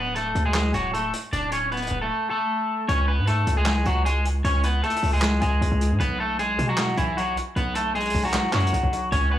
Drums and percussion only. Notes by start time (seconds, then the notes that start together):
0.15 closed hi-hat
0.35 closed hi-hat
0.54 snare, clap, closed hi-hat
0.74 closed hi-hat
0.94 closed hi-hat
1.13 closed hi-hat
1.33 closed hi-hat
1.52 closed hi-hat
1.72 closed hi-hat
1.77 closed hi-hat
1.82 closed hi-hat
1.87 closed hi-hat
2.89 closed hi-hat
3.27 closed hi-hat
3.47 closed hi-hat
3.66 snare, clap
3.85 closed hi-hat
4.06 closed hi-hat
4.25 closed hi-hat
4.44 closed hi-hat
4.63 closed hi-hat
4.83 closed hi-hat
4.90 closed hi-hat
4.96 closed hi-hat
5.03 open hi-hat
5.22 snare, clap, hi-hat pedal
5.41 closed hi-hat
5.62 closed hi-hat
5.81 closed hi-hat
6.00 closed hi-hat
6.39 closed hi-hat
6.59 closed hi-hat
6.78 snare, clap
6.97 closed hi-hat
7.18 closed hi-hat
7.37 closed hi-hat
7.56 closed hi-hat
7.75 closed hi-hat
7.95 closed hi-hat
8.00 closed hi-hat
8.05 closed hi-hat
8.10 closed hi-hat
8.14 open hi-hat
8.33 snare, clap, hi-hat pedal
8.53 snare, clap
8.60 closed hi-hat
8.67 closed hi-hat
8.73 closed hi-hat
8.93 closed hi-hat
9.12 closed hi-hat